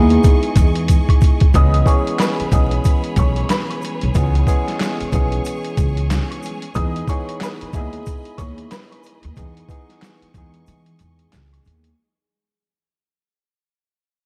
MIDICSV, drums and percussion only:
0, 0, Header, 1, 2, 480
1, 0, Start_track
1, 0, Tempo, 652174
1, 1136, Time_signature, 4, 2, 24, 8
1, 10489, End_track
2, 0, Start_track
2, 0, Title_t, "Drums"
2, 76, Note_on_c, 9, 42, 54
2, 150, Note_off_c, 9, 42, 0
2, 174, Note_on_c, 9, 82, 83
2, 179, Note_on_c, 9, 36, 104
2, 180, Note_on_c, 9, 42, 89
2, 248, Note_off_c, 9, 82, 0
2, 253, Note_off_c, 9, 36, 0
2, 254, Note_off_c, 9, 42, 0
2, 315, Note_on_c, 9, 42, 50
2, 388, Note_off_c, 9, 42, 0
2, 409, Note_on_c, 9, 42, 86
2, 410, Note_on_c, 9, 36, 98
2, 413, Note_on_c, 9, 82, 52
2, 482, Note_off_c, 9, 42, 0
2, 484, Note_off_c, 9, 36, 0
2, 487, Note_off_c, 9, 82, 0
2, 555, Note_on_c, 9, 42, 50
2, 628, Note_off_c, 9, 42, 0
2, 649, Note_on_c, 9, 42, 101
2, 656, Note_on_c, 9, 36, 60
2, 657, Note_on_c, 9, 82, 70
2, 723, Note_off_c, 9, 42, 0
2, 730, Note_off_c, 9, 36, 0
2, 731, Note_off_c, 9, 82, 0
2, 800, Note_on_c, 9, 36, 66
2, 805, Note_on_c, 9, 76, 49
2, 808, Note_on_c, 9, 42, 52
2, 874, Note_off_c, 9, 36, 0
2, 879, Note_off_c, 9, 76, 0
2, 882, Note_off_c, 9, 42, 0
2, 893, Note_on_c, 9, 82, 58
2, 896, Note_on_c, 9, 36, 99
2, 911, Note_on_c, 9, 42, 75
2, 966, Note_off_c, 9, 82, 0
2, 970, Note_off_c, 9, 36, 0
2, 985, Note_off_c, 9, 42, 0
2, 1033, Note_on_c, 9, 42, 61
2, 1041, Note_on_c, 9, 36, 100
2, 1107, Note_off_c, 9, 42, 0
2, 1114, Note_off_c, 9, 36, 0
2, 1134, Note_on_c, 9, 82, 63
2, 1136, Note_on_c, 9, 36, 110
2, 1139, Note_on_c, 9, 42, 87
2, 1207, Note_off_c, 9, 82, 0
2, 1209, Note_off_c, 9, 36, 0
2, 1213, Note_off_c, 9, 42, 0
2, 1281, Note_on_c, 9, 42, 60
2, 1355, Note_off_c, 9, 42, 0
2, 1369, Note_on_c, 9, 36, 102
2, 1375, Note_on_c, 9, 82, 54
2, 1384, Note_on_c, 9, 42, 73
2, 1442, Note_off_c, 9, 36, 0
2, 1448, Note_off_c, 9, 82, 0
2, 1458, Note_off_c, 9, 42, 0
2, 1525, Note_on_c, 9, 42, 59
2, 1599, Note_off_c, 9, 42, 0
2, 1613, Note_on_c, 9, 39, 95
2, 1616, Note_on_c, 9, 38, 116
2, 1622, Note_on_c, 9, 42, 96
2, 1631, Note_on_c, 9, 82, 73
2, 1687, Note_off_c, 9, 39, 0
2, 1690, Note_off_c, 9, 38, 0
2, 1695, Note_off_c, 9, 42, 0
2, 1705, Note_off_c, 9, 82, 0
2, 1764, Note_on_c, 9, 42, 57
2, 1838, Note_off_c, 9, 42, 0
2, 1853, Note_on_c, 9, 36, 94
2, 1853, Note_on_c, 9, 82, 51
2, 1855, Note_on_c, 9, 42, 75
2, 1926, Note_off_c, 9, 36, 0
2, 1927, Note_off_c, 9, 82, 0
2, 1929, Note_off_c, 9, 42, 0
2, 1996, Note_on_c, 9, 42, 54
2, 2070, Note_off_c, 9, 42, 0
2, 2095, Note_on_c, 9, 82, 80
2, 2099, Note_on_c, 9, 36, 101
2, 2101, Note_on_c, 9, 42, 88
2, 2168, Note_off_c, 9, 82, 0
2, 2172, Note_off_c, 9, 36, 0
2, 2175, Note_off_c, 9, 42, 0
2, 2235, Note_on_c, 9, 42, 48
2, 2309, Note_off_c, 9, 42, 0
2, 2327, Note_on_c, 9, 42, 84
2, 2330, Note_on_c, 9, 36, 95
2, 2334, Note_on_c, 9, 82, 52
2, 2401, Note_off_c, 9, 42, 0
2, 2403, Note_off_c, 9, 36, 0
2, 2407, Note_off_c, 9, 82, 0
2, 2474, Note_on_c, 9, 42, 47
2, 2548, Note_off_c, 9, 42, 0
2, 2570, Note_on_c, 9, 42, 104
2, 2574, Note_on_c, 9, 39, 88
2, 2577, Note_on_c, 9, 38, 106
2, 2579, Note_on_c, 9, 82, 71
2, 2643, Note_off_c, 9, 42, 0
2, 2647, Note_off_c, 9, 39, 0
2, 2650, Note_off_c, 9, 38, 0
2, 2652, Note_off_c, 9, 82, 0
2, 2724, Note_on_c, 9, 76, 51
2, 2728, Note_on_c, 9, 42, 51
2, 2798, Note_off_c, 9, 76, 0
2, 2802, Note_off_c, 9, 42, 0
2, 2811, Note_on_c, 9, 82, 59
2, 2831, Note_on_c, 9, 42, 74
2, 2884, Note_off_c, 9, 82, 0
2, 2905, Note_off_c, 9, 42, 0
2, 2954, Note_on_c, 9, 42, 60
2, 3028, Note_off_c, 9, 42, 0
2, 3051, Note_on_c, 9, 82, 60
2, 3055, Note_on_c, 9, 36, 112
2, 3059, Note_on_c, 9, 42, 85
2, 3124, Note_off_c, 9, 82, 0
2, 3129, Note_off_c, 9, 36, 0
2, 3132, Note_off_c, 9, 42, 0
2, 3203, Note_on_c, 9, 42, 60
2, 3276, Note_off_c, 9, 42, 0
2, 3288, Note_on_c, 9, 36, 99
2, 3294, Note_on_c, 9, 82, 54
2, 3305, Note_on_c, 9, 42, 74
2, 3362, Note_off_c, 9, 36, 0
2, 3368, Note_off_c, 9, 82, 0
2, 3378, Note_off_c, 9, 42, 0
2, 3442, Note_on_c, 9, 38, 39
2, 3446, Note_on_c, 9, 42, 61
2, 3516, Note_off_c, 9, 38, 0
2, 3519, Note_off_c, 9, 42, 0
2, 3534, Note_on_c, 9, 39, 98
2, 3537, Note_on_c, 9, 38, 118
2, 3543, Note_on_c, 9, 42, 98
2, 3548, Note_on_c, 9, 82, 73
2, 3608, Note_off_c, 9, 39, 0
2, 3611, Note_off_c, 9, 38, 0
2, 3616, Note_off_c, 9, 42, 0
2, 3622, Note_off_c, 9, 82, 0
2, 3684, Note_on_c, 9, 42, 59
2, 3758, Note_off_c, 9, 42, 0
2, 3771, Note_on_c, 9, 82, 52
2, 3772, Note_on_c, 9, 36, 95
2, 3776, Note_on_c, 9, 42, 73
2, 3845, Note_off_c, 9, 36, 0
2, 3845, Note_off_c, 9, 82, 0
2, 3850, Note_off_c, 9, 42, 0
2, 3916, Note_on_c, 9, 42, 54
2, 3990, Note_off_c, 9, 42, 0
2, 4011, Note_on_c, 9, 82, 83
2, 4021, Note_on_c, 9, 42, 89
2, 4085, Note_off_c, 9, 82, 0
2, 4095, Note_off_c, 9, 42, 0
2, 4155, Note_on_c, 9, 42, 48
2, 4228, Note_off_c, 9, 42, 0
2, 4249, Note_on_c, 9, 42, 86
2, 4250, Note_on_c, 9, 36, 99
2, 4251, Note_on_c, 9, 82, 51
2, 4323, Note_off_c, 9, 36, 0
2, 4323, Note_off_c, 9, 42, 0
2, 4324, Note_off_c, 9, 82, 0
2, 4395, Note_on_c, 9, 42, 50
2, 4468, Note_off_c, 9, 42, 0
2, 4490, Note_on_c, 9, 42, 106
2, 4494, Note_on_c, 9, 39, 84
2, 4496, Note_on_c, 9, 82, 72
2, 4497, Note_on_c, 9, 38, 108
2, 4564, Note_off_c, 9, 42, 0
2, 4568, Note_off_c, 9, 39, 0
2, 4570, Note_off_c, 9, 82, 0
2, 4571, Note_off_c, 9, 38, 0
2, 4642, Note_on_c, 9, 76, 49
2, 4649, Note_on_c, 9, 42, 50
2, 4715, Note_off_c, 9, 76, 0
2, 4722, Note_off_c, 9, 42, 0
2, 4729, Note_on_c, 9, 82, 58
2, 4752, Note_on_c, 9, 42, 75
2, 4802, Note_off_c, 9, 82, 0
2, 4826, Note_off_c, 9, 42, 0
2, 4873, Note_on_c, 9, 42, 61
2, 4947, Note_off_c, 9, 42, 0
2, 4968, Note_on_c, 9, 82, 60
2, 4975, Note_on_c, 9, 36, 112
2, 4979, Note_on_c, 9, 42, 86
2, 5042, Note_off_c, 9, 82, 0
2, 5049, Note_off_c, 9, 36, 0
2, 5052, Note_off_c, 9, 42, 0
2, 5123, Note_on_c, 9, 42, 59
2, 5196, Note_off_c, 9, 42, 0
2, 5208, Note_on_c, 9, 36, 99
2, 5212, Note_on_c, 9, 82, 55
2, 5223, Note_on_c, 9, 42, 74
2, 5282, Note_off_c, 9, 36, 0
2, 5286, Note_off_c, 9, 82, 0
2, 5297, Note_off_c, 9, 42, 0
2, 5364, Note_on_c, 9, 42, 60
2, 5438, Note_off_c, 9, 42, 0
2, 5452, Note_on_c, 9, 39, 98
2, 5455, Note_on_c, 9, 38, 116
2, 5461, Note_on_c, 9, 42, 97
2, 5468, Note_on_c, 9, 82, 74
2, 5526, Note_off_c, 9, 39, 0
2, 5529, Note_off_c, 9, 38, 0
2, 5534, Note_off_c, 9, 42, 0
2, 5541, Note_off_c, 9, 82, 0
2, 5603, Note_on_c, 9, 42, 58
2, 5676, Note_off_c, 9, 42, 0
2, 5690, Note_on_c, 9, 82, 52
2, 5692, Note_on_c, 9, 36, 97
2, 5694, Note_on_c, 9, 42, 72
2, 5764, Note_off_c, 9, 82, 0
2, 5765, Note_off_c, 9, 36, 0
2, 5768, Note_off_c, 9, 42, 0
2, 5835, Note_on_c, 9, 42, 54
2, 5909, Note_off_c, 9, 42, 0
2, 5932, Note_on_c, 9, 82, 81
2, 5938, Note_on_c, 9, 36, 100
2, 5940, Note_on_c, 9, 42, 91
2, 6006, Note_off_c, 9, 82, 0
2, 6012, Note_off_c, 9, 36, 0
2, 6014, Note_off_c, 9, 42, 0
2, 6074, Note_on_c, 9, 42, 48
2, 6148, Note_off_c, 9, 42, 0
2, 6169, Note_on_c, 9, 42, 85
2, 6170, Note_on_c, 9, 36, 96
2, 6174, Note_on_c, 9, 82, 50
2, 6242, Note_off_c, 9, 42, 0
2, 6243, Note_off_c, 9, 36, 0
2, 6247, Note_off_c, 9, 82, 0
2, 6315, Note_on_c, 9, 42, 50
2, 6388, Note_off_c, 9, 42, 0
2, 6410, Note_on_c, 9, 42, 100
2, 6414, Note_on_c, 9, 39, 83
2, 6417, Note_on_c, 9, 38, 107
2, 6417, Note_on_c, 9, 82, 70
2, 6483, Note_off_c, 9, 42, 0
2, 6487, Note_off_c, 9, 39, 0
2, 6490, Note_off_c, 9, 38, 0
2, 6490, Note_off_c, 9, 82, 0
2, 6562, Note_on_c, 9, 76, 50
2, 6569, Note_on_c, 9, 42, 50
2, 6636, Note_off_c, 9, 76, 0
2, 6642, Note_off_c, 9, 42, 0
2, 6649, Note_on_c, 9, 82, 57
2, 6672, Note_on_c, 9, 42, 72
2, 6723, Note_off_c, 9, 82, 0
2, 6745, Note_off_c, 9, 42, 0
2, 6793, Note_on_c, 9, 42, 59
2, 6867, Note_off_c, 9, 42, 0
2, 6891, Note_on_c, 9, 82, 62
2, 6895, Note_on_c, 9, 36, 109
2, 6899, Note_on_c, 9, 42, 85
2, 6965, Note_off_c, 9, 82, 0
2, 6969, Note_off_c, 9, 36, 0
2, 6972, Note_off_c, 9, 42, 0
2, 7043, Note_on_c, 9, 42, 60
2, 7117, Note_off_c, 9, 42, 0
2, 7129, Note_on_c, 9, 36, 102
2, 7134, Note_on_c, 9, 82, 54
2, 7145, Note_on_c, 9, 42, 74
2, 7202, Note_off_c, 9, 36, 0
2, 7208, Note_off_c, 9, 82, 0
2, 7218, Note_off_c, 9, 42, 0
2, 7282, Note_on_c, 9, 38, 39
2, 7286, Note_on_c, 9, 42, 59
2, 7356, Note_off_c, 9, 38, 0
2, 7359, Note_off_c, 9, 42, 0
2, 7374, Note_on_c, 9, 39, 95
2, 7377, Note_on_c, 9, 38, 117
2, 7383, Note_on_c, 9, 42, 99
2, 7390, Note_on_c, 9, 82, 74
2, 7448, Note_off_c, 9, 39, 0
2, 7451, Note_off_c, 9, 38, 0
2, 7457, Note_off_c, 9, 42, 0
2, 7463, Note_off_c, 9, 82, 0
2, 7524, Note_on_c, 9, 42, 58
2, 7598, Note_off_c, 9, 42, 0
2, 7612, Note_on_c, 9, 36, 94
2, 7612, Note_on_c, 9, 82, 52
2, 7615, Note_on_c, 9, 42, 74
2, 7686, Note_off_c, 9, 36, 0
2, 7686, Note_off_c, 9, 82, 0
2, 7689, Note_off_c, 9, 42, 0
2, 7756, Note_on_c, 9, 42, 55
2, 7830, Note_off_c, 9, 42, 0
2, 7853, Note_on_c, 9, 82, 79
2, 7861, Note_on_c, 9, 42, 86
2, 7926, Note_off_c, 9, 82, 0
2, 7935, Note_off_c, 9, 42, 0
2, 7995, Note_on_c, 9, 42, 49
2, 8068, Note_off_c, 9, 42, 0
2, 8089, Note_on_c, 9, 42, 85
2, 8096, Note_on_c, 9, 82, 51
2, 8162, Note_off_c, 9, 42, 0
2, 8169, Note_off_c, 9, 82, 0
2, 8236, Note_on_c, 9, 42, 48
2, 8309, Note_off_c, 9, 42, 0
2, 8331, Note_on_c, 9, 42, 99
2, 8335, Note_on_c, 9, 39, 87
2, 8338, Note_on_c, 9, 38, 105
2, 8339, Note_on_c, 9, 82, 69
2, 8405, Note_off_c, 9, 42, 0
2, 8409, Note_off_c, 9, 39, 0
2, 8412, Note_off_c, 9, 38, 0
2, 8412, Note_off_c, 9, 82, 0
2, 8484, Note_on_c, 9, 76, 49
2, 8491, Note_on_c, 9, 42, 51
2, 8558, Note_off_c, 9, 76, 0
2, 8564, Note_off_c, 9, 42, 0
2, 8571, Note_on_c, 9, 82, 58
2, 8592, Note_on_c, 9, 42, 76
2, 8645, Note_off_c, 9, 82, 0
2, 8666, Note_off_c, 9, 42, 0
2, 8714, Note_on_c, 9, 42, 59
2, 8787, Note_off_c, 9, 42, 0
2, 10489, End_track
0, 0, End_of_file